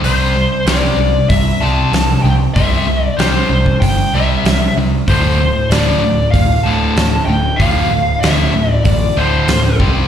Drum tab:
HH |o---o---o---o---|o---o---o---o---|o---o---o---o---|o---o---o---o---|
SD |----o-------o---|----o-------o---|----o-------o---|----o-------o---|
BD |--------o-------|o------oo-------|o-------o-------|o-------o-----o-|